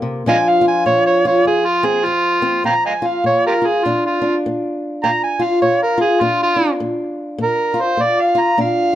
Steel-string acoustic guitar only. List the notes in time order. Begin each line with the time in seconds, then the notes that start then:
Already playing: A#3 G4
0.02 C3
0.26 A#2 F3 D4 F4
0.61 F4
0.86 A#2
1.25 F4
1.45 F2
1.83 C4
2.06 F2
2.42 C4
2.64 A#2
3.02 F4
3.24 A#2
3.62 F4
3.85 A#2 D4
4.22 D4
4.46 A#2
5.04 A#2
5.39 F4
5.62 A#2
5.98 F4
6.21 A#2 D4
6.56 D4
6.80 A#2
7.38 A#2
7.74 F4
7.97 A#2
8.35 F4
8.58 A#2 D4